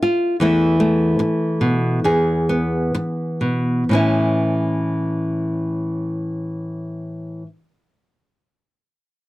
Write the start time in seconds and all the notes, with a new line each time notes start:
Already playing: A3
0.02 F4
0.40 E2 E3 A3 E4
0.80 A3
1.19 muted nylon-string guitar stroke
1.61 B2
2.04 E2 G#4
2.49 B3
2.95 muted nylon-string guitar stroke
3.41 B2
3.89 A2 E3 C#4
3.95 E4